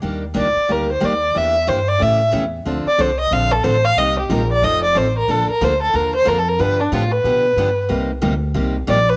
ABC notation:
X:1
M:4/4
L:1/8
Q:"Swing" 1/4=183
K:Eblyd
V:1 name="Violin"
z2 d2 B c d2 | =e2 c d e2 z2 | z d c e f A c f | e G B d e d c B |
A B c A B c (3B A B | =B D F B4- B | z6 d =B |]
V:2 name="Steel-string acoustic guitar"
[E,G,B,DG] z [E,G,B,DG] z [E,G,B,DG] z [E,G,B,DG] z | [=E,B,DG] z [E,B,DG] z [^C,E,A,^CG] z [C,E,A,CG] z | [D,F,CDA] z [D,F,CDA] z [D,F,CDA] z [D,F,CDA] z | [C,G,B,EG] z [C,G,B,EG] z [F,CEA] z [F,CEA] z |
[D,F,B,DA] z [D,F,B,DA] z [D,F,B,DA] z [D,F,B,DA] z | [D,F,=B,DG] z [D,F,B,DG] z [D,F,B,DG] z [D,F,B,DG] z | [C,G,B,EG] z [C,G,B,EG] z [C,G,B,EG] z [C,G,B,EG] z |]
V:3 name="Upright bass" clef=bass
E,,2 ^C,, z D,,2 E,,2 | =E,,2 G,,2 A,,2 E,,2 | D,, z C,,2 B,,,2 A,,,2 | C,,2 B,,,2 F,,,2 A,,,2 |
B,,, z D,,2 E,,2 F,,2 | G,,2 A,,2 =B,,2 G,,2 | C,,2 D,,2 C,,2 B,,,2 |]